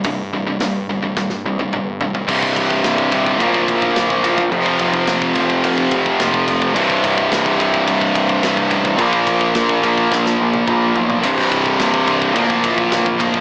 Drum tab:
CC |----------------|x---------------|----------------|----------------|
RD |----------------|--x-x-x-x-x-x-x-|x-x-x-x-x-x-x-x-|x-x-x-x-x-x-x-x-|
HH |o---o-----------|----------------|----------------|----------------|
SD |----o---oo------|----o-------o---|----o-------o---|----o-------o---|
T1 |-----------o----|----------------|----------------|----------------|
T2 |------------o---|----------------|----------------|----------------|
FT |--------------oo|----------------|----------------|----------------|
BD |o-------o-------|oooooooooooooooo|oooooooooooooooo|oooooooooooooooo|

CC |----------------|x---------------|
RD |x-x-x-x---------|x-x-x-x-x-x-x-x-|
HH |----------------|----------------|
SD |----o---oo------|----o-------o---|
T1 |-----------o----|----------------|
T2 |------------o---|----------------|
FT |--------------oo|----------------|
BD |ooooooooo---o---|oooooooooooooooo|